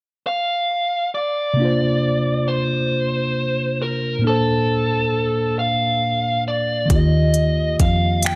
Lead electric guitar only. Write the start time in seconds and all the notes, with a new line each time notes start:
0.27 F5
1.15 D5
2.48 C5
3.82 A#4
4.27 A4
5.59 F5
6.48 D5
6.91 D#5
7.81 F5
8.25 G5